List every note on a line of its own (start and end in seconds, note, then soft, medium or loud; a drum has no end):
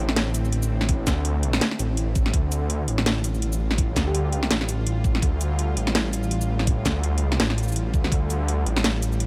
0.00 1.06 A1 loud
0.00 9.27 D3 medium
0.00 2.30 A3 medium
0.00 2.32 C4 loud
0.09 snare medium
0.16 snare loud
0.16 closed hi-hat medium
0.34 closed hi-hat medium
0.34 shaker medium
0.45 shaker soft
0.52 closed hi-hat medium
0.63 shaker medium
0.81 snare medium
0.89 kick loud
0.89 closed hi-hat medium
1.07 1.60 D2 loud
1.07 kick medium
1.07 snare medium
1.07 closed hi-hat medium
1.07 shaker medium
1.25 closed hi-hat medium
1.43 closed hi-hat medium
1.53 snare medium
1.61 snare loud
1.61 closed hi-hat medium
1.61 shaker soft
1.71 snare medium
1.79 2.32 A1 loud
1.79 closed hi-hat medium
1.79 shaker medium
1.97 closed hi-hat medium
2.15 kick loud
2.15 closed hi-hat soft
2.15 shaker soft
2.26 snare medium
2.33 2.87 D2 medium
2.33 9.27 G3 medium
2.33 8.10 F4 medium
2.33 kick loud
2.33 closed hi-hat medium
2.52 closed hi-hat medium
2.52 shaker medium
2.70 closed hi-hat medium
2.88 3.95 A1 medium
2.88 closed hi-hat medium
2.98 snare medium
3.06 snare loud
3.06 closed hi-hat medium
3.24 closed hi-hat medium
3.24 shaker medium
3.34 shaker soft
3.42 closed hi-hat medium
3.53 shaker medium
3.71 snare medium
3.78 kick loud
3.78 closed hi-hat medium
3.96 4.49 D2 loud
3.96 kick medium
3.96 snare medium
3.96 closed hi-hat medium
3.96 shaker medium
4.06 4.57 G4 loud
4.15 closed hi-hat medium
4.33 closed hi-hat medium
4.43 snare medium
4.50 5.21 A1 loud
4.50 snare loud
4.50 closed hi-hat medium
4.61 snare medium
4.69 closed hi-hat medium
4.69 shaker medium
4.87 closed hi-hat medium
5.04 kick loud
5.04 shaker soft
5.15 snare medium
5.22 5.76 D2 medium
5.22 kick loud
5.22 closed hi-hat medium
5.41 closed hi-hat medium
5.41 shaker medium
5.59 closed hi-hat medium
5.77 6.84 A1 medium
5.77 closed hi-hat medium
5.87 snare medium
5.95 snare loud
5.95 closed hi-hat medium
6.13 closed hi-hat medium
6.13 shaker medium
6.23 shaker soft
6.31 closed hi-hat medium
6.41 shaker medium
6.59 snare medium
6.67 kick loud
6.67 closed hi-hat medium
6.85 7.38 D2 loud
6.85 kick medium
6.85 snare medium
6.85 closed hi-hat medium
6.85 shaker medium
7.04 closed hi-hat medium
7.18 closed hi-hat medium
7.32 snare medium
7.39 7.92 A1 loud
7.39 snare loud
7.39 closed hi-hat medium
7.50 snare medium
7.58 closed hi-hat medium
7.58 shaker soft
7.63 shaker soft
7.68 shaker soft
7.72 shaker medium
7.76 closed hi-hat medium
7.94 8.11 D2 medium
7.94 kick loud
7.94 shaker soft
8.04 snare soft
8.12 8.65 D2 medium
8.12 9.27 D4 medium
8.12 kick loud
8.12 closed hi-hat medium
8.30 closed hi-hat medium
8.30 shaker medium
8.48 closed hi-hat medium
8.66 9.27 A1 loud
8.66 closed hi-hat medium
8.77 snare medium
8.84 snare loud
8.84 closed hi-hat medium
9.02 closed hi-hat medium
9.02 shaker medium
9.12 shaker soft
9.20 closed hi-hat medium